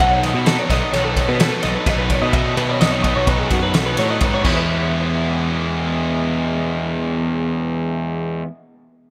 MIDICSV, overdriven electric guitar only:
0, 0, Header, 1, 2, 480
1, 0, Start_track
1, 0, Key_signature, 4, "major"
1, 0, Tempo, 469484
1, 2390, Time_signature, 5, 2, 24, 8
1, 9306, End_track
2, 0, Start_track
2, 0, Title_t, "Overdriven electric guitar"
2, 0, Program_c, 0, 29
2, 0, Note_on_c, 0, 47, 99
2, 0, Note_on_c, 0, 51, 103
2, 0, Note_on_c, 0, 54, 103
2, 2, Note_on_c, 0, 59, 103
2, 12, Note_on_c, 0, 63, 98
2, 14, Note_on_c, 0, 69, 109
2, 460, Note_off_c, 0, 54, 0
2, 464, Note_on_c, 0, 54, 79
2, 470, Note_off_c, 0, 59, 0
2, 474, Note_on_c, 0, 59, 90
2, 480, Note_off_c, 0, 63, 0
2, 484, Note_on_c, 0, 63, 95
2, 486, Note_off_c, 0, 69, 0
2, 491, Note_on_c, 0, 69, 94
2, 697, Note_off_c, 0, 69, 0
2, 701, Note_on_c, 0, 69, 76
2, 708, Note_off_c, 0, 63, 0
2, 713, Note_on_c, 0, 63, 68
2, 714, Note_off_c, 0, 51, 0
2, 714, Note_off_c, 0, 59, 0
2, 718, Note_on_c, 0, 59, 74
2, 725, Note_off_c, 0, 54, 0
2, 730, Note_on_c, 0, 54, 58
2, 732, Note_off_c, 0, 47, 0
2, 944, Note_on_c, 0, 47, 110
2, 952, Note_on_c, 0, 51, 95
2, 956, Note_off_c, 0, 54, 0
2, 957, Note_off_c, 0, 59, 0
2, 960, Note_on_c, 0, 54, 104
2, 961, Note_on_c, 0, 59, 112
2, 962, Note_off_c, 0, 63, 0
2, 966, Note_on_c, 0, 63, 115
2, 970, Note_off_c, 0, 69, 0
2, 974, Note_on_c, 0, 69, 120
2, 1419, Note_off_c, 0, 54, 0
2, 1423, Note_on_c, 0, 54, 90
2, 1428, Note_off_c, 0, 59, 0
2, 1428, Note_off_c, 0, 63, 0
2, 1432, Note_on_c, 0, 59, 85
2, 1438, Note_off_c, 0, 69, 0
2, 1440, Note_on_c, 0, 63, 97
2, 1451, Note_on_c, 0, 69, 99
2, 1653, Note_off_c, 0, 69, 0
2, 1665, Note_off_c, 0, 63, 0
2, 1665, Note_on_c, 0, 69, 85
2, 1667, Note_off_c, 0, 47, 0
2, 1671, Note_off_c, 0, 51, 0
2, 1678, Note_on_c, 0, 63, 76
2, 1680, Note_off_c, 0, 59, 0
2, 1684, Note_on_c, 0, 59, 64
2, 1691, Note_off_c, 0, 54, 0
2, 1695, Note_on_c, 0, 54, 66
2, 1899, Note_on_c, 0, 47, 84
2, 1908, Note_on_c, 0, 51, 93
2, 1909, Note_off_c, 0, 54, 0
2, 1909, Note_off_c, 0, 63, 0
2, 1913, Note_on_c, 0, 54, 88
2, 1915, Note_off_c, 0, 59, 0
2, 1917, Note_off_c, 0, 69, 0
2, 1919, Note_on_c, 0, 59, 94
2, 1921, Note_on_c, 0, 63, 93
2, 1930, Note_on_c, 0, 69, 94
2, 2360, Note_off_c, 0, 47, 0
2, 2368, Note_off_c, 0, 51, 0
2, 2372, Note_off_c, 0, 54, 0
2, 2372, Note_on_c, 0, 47, 91
2, 2377, Note_off_c, 0, 59, 0
2, 2380, Note_on_c, 0, 51, 106
2, 2382, Note_off_c, 0, 63, 0
2, 2385, Note_on_c, 0, 54, 98
2, 2389, Note_off_c, 0, 69, 0
2, 2389, Note_on_c, 0, 59, 116
2, 2395, Note_on_c, 0, 63, 114
2, 2401, Note_on_c, 0, 69, 115
2, 2848, Note_off_c, 0, 54, 0
2, 2858, Note_off_c, 0, 59, 0
2, 2860, Note_on_c, 0, 54, 82
2, 2863, Note_off_c, 0, 63, 0
2, 2870, Note_on_c, 0, 59, 88
2, 2874, Note_off_c, 0, 69, 0
2, 2875, Note_on_c, 0, 63, 85
2, 2886, Note_on_c, 0, 69, 98
2, 3087, Note_off_c, 0, 69, 0
2, 3100, Note_off_c, 0, 63, 0
2, 3100, Note_on_c, 0, 69, 67
2, 3101, Note_off_c, 0, 47, 0
2, 3105, Note_off_c, 0, 51, 0
2, 3105, Note_off_c, 0, 59, 0
2, 3112, Note_on_c, 0, 63, 79
2, 3114, Note_off_c, 0, 54, 0
2, 3117, Note_on_c, 0, 59, 67
2, 3126, Note_on_c, 0, 54, 62
2, 3337, Note_on_c, 0, 47, 104
2, 3342, Note_off_c, 0, 54, 0
2, 3343, Note_on_c, 0, 51, 103
2, 3345, Note_off_c, 0, 59, 0
2, 3346, Note_off_c, 0, 63, 0
2, 3354, Note_on_c, 0, 54, 115
2, 3356, Note_off_c, 0, 69, 0
2, 3358, Note_on_c, 0, 59, 94
2, 3358, Note_on_c, 0, 63, 102
2, 3368, Note_on_c, 0, 69, 106
2, 3809, Note_off_c, 0, 54, 0
2, 3821, Note_on_c, 0, 54, 89
2, 3826, Note_off_c, 0, 59, 0
2, 3833, Note_off_c, 0, 63, 0
2, 3838, Note_on_c, 0, 59, 86
2, 3840, Note_off_c, 0, 69, 0
2, 3846, Note_on_c, 0, 63, 87
2, 3852, Note_on_c, 0, 69, 88
2, 4054, Note_off_c, 0, 69, 0
2, 4063, Note_off_c, 0, 47, 0
2, 4063, Note_off_c, 0, 63, 0
2, 4066, Note_off_c, 0, 51, 0
2, 4066, Note_on_c, 0, 69, 74
2, 4073, Note_off_c, 0, 59, 0
2, 4076, Note_on_c, 0, 63, 68
2, 4079, Note_off_c, 0, 54, 0
2, 4086, Note_on_c, 0, 59, 72
2, 4091, Note_on_c, 0, 54, 70
2, 4295, Note_off_c, 0, 54, 0
2, 4297, Note_on_c, 0, 47, 77
2, 4301, Note_off_c, 0, 59, 0
2, 4302, Note_on_c, 0, 51, 82
2, 4307, Note_on_c, 0, 54, 84
2, 4308, Note_off_c, 0, 63, 0
2, 4308, Note_off_c, 0, 69, 0
2, 4314, Note_on_c, 0, 59, 88
2, 4321, Note_on_c, 0, 63, 82
2, 4321, Note_on_c, 0, 69, 93
2, 4520, Note_off_c, 0, 51, 0
2, 4524, Note_on_c, 0, 52, 105
2, 4539, Note_off_c, 0, 54, 0
2, 4542, Note_off_c, 0, 59, 0
2, 4543, Note_off_c, 0, 47, 0
2, 4543, Note_on_c, 0, 56, 103
2, 4554, Note_on_c, 0, 59, 103
2, 4555, Note_off_c, 0, 63, 0
2, 4555, Note_off_c, 0, 69, 0
2, 4565, Note_on_c, 0, 64, 124
2, 8625, Note_off_c, 0, 52, 0
2, 8644, Note_off_c, 0, 56, 0
2, 8656, Note_off_c, 0, 59, 0
2, 8666, Note_off_c, 0, 64, 0
2, 9306, End_track
0, 0, End_of_file